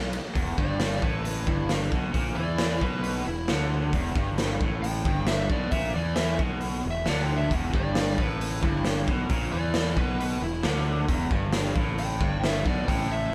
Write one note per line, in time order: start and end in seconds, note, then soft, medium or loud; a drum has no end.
0.00 0.19 B1 medium
0.13 ride medium
0.35 0.57 E1 medium
0.35 0.57 E2 medium
0.35 kick loud
0.35 open hi-hat medium
0.57 0.99 G1 medium
0.57 1.02 G2 loud
0.57 1.02 D5 medium
0.57 kick medium
0.80 snare loud
0.80 open hi-hat medium
1.02 1.44 A1 medium
1.02 1.46 A2 medium
1.02 1.23 B4 medium
1.02 kick loud
1.24 1.46 B4 medium
1.24 open hi-hat medium
1.47 1.89 G1 loud
1.47 1.91 G2 loud
1.47 1.69 E4 medium
1.47 kick loud
1.69 snare loud
1.69 open hi-hat medium
1.92 2.13 B1 medium
1.92 2.13 B2 medium
1.92 kick loud
2.13 2.35 A#1 medium
2.13 2.35 A#2 loud
2.13 kick loud
2.13 open hi-hat medium
2.36 2.78 E2 medium
2.36 2.80 E3 loud
2.36 2.79 D5 medium
2.58 snare loud
2.58 open hi-hat medium
2.81 3.23 B1 medium
2.81 3.25 B2 loud
2.81 3.02 B4 medium
2.81 kick medium
3.03 3.25 B4 medium
3.03 open hi-hat medium
3.25 3.47 E1 medium
3.25 3.44 E2 medium
3.25 3.47 E4 medium
3.48 3.91 D2 medium
3.48 3.93 D3 loud
3.48 snare loud
3.48 open hi-hat soft
3.93 4.14 E1 medium
3.93 4.15 E2 loud
3.93 kick medium
3.93 open hi-hat soft
4.16 4.57 G1 medium
4.16 4.60 G2 loud
4.16 kick loud
4.38 snare loud
4.38 open hi-hat medium
4.61 5.02 A1 medium
4.61 5.05 A2 medium
4.61 kick medium
4.82 5.26 G5 medium
4.82 open hi-hat medium
5.05 5.47 G1 medium
5.05 5.49 G2 medium
5.05 kick loud
5.27 5.49 E5 medium
5.27 snare loud
5.27 open hi-hat medium
5.50 5.71 B1 medium
5.50 5.72 B2 loud
5.50 5.71 D5 medium
5.50 kick loud
5.71 5.93 A#1 medium
5.71 5.94 A#2 loud
5.71 5.94 E5 medium
5.71 kick loud
5.71 open hi-hat medium
5.94 6.37 E2 medium
5.94 6.39 E3 loud
5.94 6.15 D5 medium
6.15 6.38 E5 medium
6.15 snare loud
6.15 open hi-hat medium
6.39 6.81 B1 medium
6.39 6.83 B2 medium
6.39 kick loud
6.61 open hi-hat medium
6.85 7.06 E1 medium
6.85 7.02 E2 medium
6.91 7.08 E5 loud
7.06 7.49 D2 medium
7.06 7.51 D3 loud
7.06 7.21 D5 medium
7.06 snare medium
7.06 open hi-hat medium
7.22 7.36 G5 medium
7.36 7.51 E5 medium
7.51 7.72 E1 medium
7.51 7.73 E2 loud
7.51 kick medium
7.51 open hi-hat medium
7.73 8.15 G1 medium
7.73 8.17 G2 loud
7.73 8.17 D5 medium
7.73 kick medium
7.95 snare loud
7.95 open hi-hat medium
8.18 8.60 A1 medium
8.18 8.62 A2 medium
8.18 8.39 B4 medium
8.18 kick loud
8.41 8.62 B4 medium
8.41 open hi-hat medium
8.62 9.04 G1 medium
8.62 9.06 G2 loud
8.62 8.85 E4 medium
8.62 kick loud
8.85 snare medium
8.85 open hi-hat medium
9.07 9.28 B1 medium
9.07 9.29 B2 loud
9.07 kick loud
9.29 9.51 A#1 loud
9.29 9.51 A#2 loud
9.29 kick loud
9.29 open hi-hat medium
9.52 9.94 E2 medium
9.52 9.96 E3 medium
9.52 9.95 D5 medium
9.74 snare loud
9.74 open hi-hat medium
9.97 10.38 B1 medium
9.97 10.41 B2 medium
9.97 10.19 B4 medium
9.97 kick loud
10.20 10.41 B4 medium
10.20 open hi-hat medium
10.42 10.63 E1 medium
10.42 10.59 E2 medium
10.42 10.63 E4 medium
10.63 11.06 D2 medium
10.63 11.08 D3 loud
10.63 snare loud
10.63 open hi-hat medium
11.09 11.29 E1 loud
11.09 11.30 E2 loud
11.09 kick medium
11.09 open hi-hat medium
11.31 11.72 G1 medium
11.31 11.75 G2 loud
11.31 kick loud
11.53 snare loud
11.53 open hi-hat medium
11.76 12.17 A1 medium
11.76 12.20 A2 loud
11.76 kick loud
11.98 12.42 G5 medium
11.98 open hi-hat medium
12.20 12.62 G1 loud
12.20 12.65 G2 loud
12.20 kick loud
12.44 12.65 E5 medium
12.44 snare loud
12.44 open hi-hat soft
12.65 12.86 B1 medium
12.65 12.87 B2 loud
12.65 12.87 D5 medium
12.65 kick loud
12.88 13.29 A1 medium
12.88 13.31 A2 loud
12.88 13.09 G5 medium
12.88 kick loud
12.88 open hi-hat medium
13.12 13.35 E5 medium